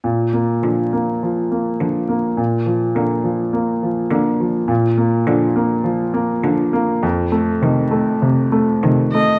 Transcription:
X:1
M:4/4
L:1/8
Q:1/4=102
K:Bb
V:1 name="Violin"
z8 | z8 | z8 | z6 z e |]
V:2 name="Grand piano" clef=bass
B,, B, F, B, F, B, F, B, | B,, F, B, F, B, F, B, F, | B,, B, F, B, F, B, F, B, | F,, A, C, A, C, A, C, A, |]
V:3 name="Cello" clef=bass
z2 D,2 z2 D,2 | z2 D,2 z2 D,2 | z2 D,2 z2 D,2 | z2 E,2 z2 E,2 |]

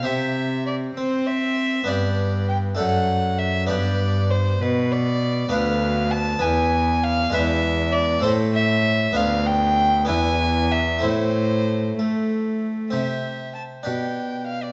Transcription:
X:1
M:6/8
L:1/16
Q:3/8=66
K:Gmix
V:1 name="Violin"
e4 d2 c2 e4 | d4 g2 ^f4 e2 | d4 c2 B2 d4 | [K:Am] f4 a2 ^g4 f2 |
e4 d2 c2 e4 | f2 g4 ^g4 e2 | c6 z6 | [K:C] e4 a2 g4 f d |]
V:2 name="Harpsichord"
[CG]12 | [B,DG]6 [A,DA]6 | [B,DG]12 | [K:Am] [B,DB]6 [B,B]6 |
[^G,DB]6 [A,CA]6 | [B,DF]6 [B,DE]6 | [A,CE]12 | [K:C] [CG]6 [DG]6 |]
V:3 name="Harpsichord" clef=bass
C,6 C6 | G,,6 ^F,,6 | G,,6 B,,6 | [K:Am] D,,6 E,,6 |
E,,6 A,,6 | D,,6 E,,6 | A,,6 A,6 | [K:C] C,6 B,,6 |]
V:4 name="Cello" clef=bass
C,6 C6 | G,,6 ^F,,6 | G,,6 B,,6 | [K:Am] D,,6 E,,6 |
E,,6 A,,6 | D,,6 E,,6 | A,,6 A,6 | [K:C] C,6 B,,6 |]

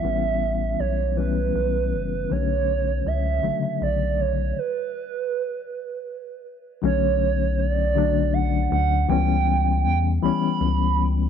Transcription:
X:1
M:6/8
L:1/8
Q:3/8=53
K:Bm
V:1 name="Soft synth lead"
e2 c B3 | c2 e2 d c | B4- B z | c2 d2 f f |
g2 g b2 z |]
V:2 name="Reed electric piano" clef=bass
[E,G,B,C]2 z [E,G,B,C]2 z | [D,F,A,C]2 z [C,D,F,A,]2 z | z6 | [D,F,A,C]2 z [D,F,A,D]2 z |
[E,G,B,C]2 z [E,G,B,C]2 z |]
V:3 name="Analog synth bass" clef=bass
A,,,2 B,,,2 B,,, F,,, | B,,,2 C,, B,,, B,,,2 | z6 | B,,,4- B,,, D,, |
C,,2 E,, C,, C,,2 |]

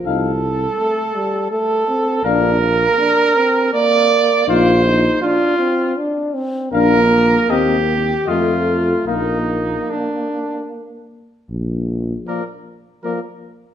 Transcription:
X:1
M:3/4
L:1/8
Q:1/4=80
K:Bb
V:1 name="Trumpet"
f z4 z | f z4 z | f z4 z | f z e z e z |
f z4 z | z2 d2 d2 |]
V:2 name="Trumpet"
A4 A2 | B4 d2 | c2 F2 z2 | B2 G2 F2 |
E2 D2 z2 | z2 B2 B2 |]
V:3 name="French horn"
E z4 z | D z4 z | E z4 z | D z C z A, z |
B, z4 z | z2 B,2 B,2 |]
V:4 name="Trombone"
F, z A, G, A, C | D B, D C B,2 | F E D C D C | B,3 z A,2 |
B,4- B, z | z2 F,2 F,2 |]
V:5 name="Bass trombone" clef=bass
C,,2 z4 | B,,,2 z4 | B,,,2 z4 | B,,,2 E,,2 F,,2 |
B,,,2 z4 | B,,,2 z4 |]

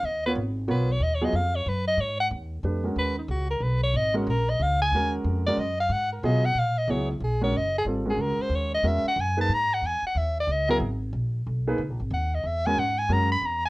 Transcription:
X:1
M:3/4
L:1/8
Q:"Swing" 1/4=184
K:G#dor
V:1 name="Soprano saxophone"
d B z2 B c | (3d c d e c B d | c f z4 | B D F A B c |
d F A d e g- | g z2 =d ^d e | f A d f e d | [K:C#dor] c E G c d G |
z G A ^B c d | e f g =a ^a f | g f e =d ^d A | z6 |
z2 f d e g | f g a b a g |]
V:2 name="Grand piano"
z [B,EAc] z2 [B,EAc] z | z [F,B,EG] z4 | z4 [=A,=D=GB] [^G,CF^A]- | [G,CFA] z4 z |
z [G,CFA] z4 | [G,CFA]3 [G,CFA] z2 | z2 [F,B,EG] z3 | [K:C#dor] [F,B,EG] z2 [G,CFA] z2 |
[=G,^B,^E=A] [^G,CF^A]4 z | [G,CFA] z2 [A,DGB] z2 | z4 z [F,B,EG] | z4 z [A,DGB] |
z4 z [G,CFA] | z2 [G,CFA] z3 |]
V:3 name="Upright bass" clef=bass
D,,2 G,,,2 B,,,2 | D,,2 E,,2 F,,2 | G,,2 D,,2 E,,2 | D,,2 C,,2 B,,,2 |
G,,,2 A,,,2 C,,2 | D,,2 E,,2 F,,2 | G,,2 B,,2 A,,2 | [K:C#dor] C,,2 A,,,2 F,,,2 |
G,,,2 C,, z D,,2 | E,, z F,,2 G,,2 | E,, z D,,2 C,,2 | G,,,2 A,,,2 B,,,2 |
(3C,, A,,, G,,, D,,2 E,,2 | G,,2 F,,2 E,,2 |]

